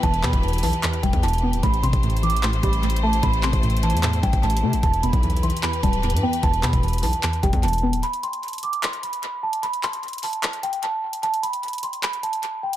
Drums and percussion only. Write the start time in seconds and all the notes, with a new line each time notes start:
0.03 kick, closed hi-hat
0.14 closed hi-hat
0.23 clap, closed hi-hat
0.33 kick, closed hi-hat
0.43 closed hi-hat
0.48 closed hi-hat
0.53 closed hi-hat
0.58 closed hi-hat
0.63 open hi-hat
0.73 closed hi-hat
0.83 clap, closed hi-hat
0.93 closed hi-hat
1.03 kick, closed hi-hat
1.13 kick, closed hi-hat
1.23 closed hi-hat
1.28 closed hi-hat
1.33 closed hi-hat
1.38 closed hi-hat
1.53 closed hi-hat
1.63 kick, closed hi-hat
1.74 closed hi-hat
1.83 closed hi-hat
1.93 kick, closed hi-hat
2.03 closed hi-hat
2.10 closed hi-hat
2.17 closed hi-hat
2.23 closed hi-hat
2.30 closed hi-hat
2.37 closed hi-hat
2.43 clap, closed hi-hat
2.53 closed hi-hat
2.63 kick, closed hi-hat
2.73 closed hi-hat
2.83 closed hi-hat
2.90 closed hi-hat
2.96 closed hi-hat
3.13 closed hi-hat
3.23 kick, closed hi-hat
3.33 closed hi-hat
3.43 clap, closed hi-hat
3.53 kick, closed hi-hat
3.63 closed hi-hat
3.70 closed hi-hat
3.77 closed hi-hat
3.83 closed hi-hat, open hi-hat
3.90 closed hi-hat
3.97 closed hi-hat
4.03 clap, closed hi-hat
4.13 closed hi-hat
4.23 kick, closed hi-hat
4.33 kick, closed hi-hat
4.43 closed hi-hat
4.50 closed hi-hat
4.57 closed hi-hat
4.73 closed hi-hat
4.83 kick, closed hi-hat
4.93 closed hi-hat
5.03 closed hi-hat
5.13 kick, closed hi-hat
5.23 closed hi-hat
5.30 closed hi-hat
5.37 closed hi-hat
5.43 closed hi-hat
5.50 closed hi-hat
5.57 closed hi-hat
5.63 clap, closed hi-hat
5.73 closed hi-hat
5.83 kick, closed hi-hat
5.93 closed hi-hat
6.03 closed hi-hat
6.10 closed hi-hat
6.17 closed hi-hat
6.33 closed hi-hat
6.43 kick, closed hi-hat
6.53 closed hi-hat
6.63 clap, closed hi-hat
6.73 kick, closed hi-hat
6.83 closed hi-hat
6.88 closed hi-hat
6.93 closed hi-hat
6.98 closed hi-hat
7.03 open hi-hat
7.13 closed hi-hat
7.23 clap, closed hi-hat
7.33 closed hi-hat
7.43 kick, closed hi-hat
7.53 kick, closed hi-hat
7.63 closed hi-hat
7.68 closed hi-hat
7.73 closed hi-hat
7.78 closed hi-hat
7.93 closed hi-hat
8.03 closed hi-hat
8.13 closed hi-hat
8.23 closed hi-hat
8.33 closed hi-hat
8.43 closed hi-hat
8.48 closed hi-hat
8.53 closed hi-hat
8.58 closed hi-hat
8.63 closed hi-hat
8.73 closed hi-hat
8.83 clap, closed hi-hat
8.93 closed hi-hat
9.03 closed hi-hat
9.13 closed hi-hat
9.23 closed hi-hat
9.53 closed hi-hat
9.63 closed hi-hat
9.73 closed hi-hat
9.83 clap, closed hi-hat
9.93 closed hi-hat
10.03 closed hi-hat
10.08 closed hi-hat
10.13 closed hi-hat
10.18 closed hi-hat
10.23 open hi-hat
10.33 closed hi-hat
10.43 clap, closed hi-hat
10.53 closed hi-hat
10.63 closed hi-hat
10.73 closed hi-hat
10.83 closed hi-hat
11.13 closed hi-hat
11.23 closed hi-hat
11.34 closed hi-hat
11.43 closed hi-hat
11.53 closed hi-hat
11.63 closed hi-hat
11.68 closed hi-hat
11.73 closed hi-hat
11.78 closed hi-hat
11.83 closed hi-hat
11.93 closed hi-hat
12.03 clap, closed hi-hat
12.13 closed hi-hat
12.23 closed hi-hat
12.33 closed hi-hat
12.43 closed hi-hat
12.73 closed hi-hat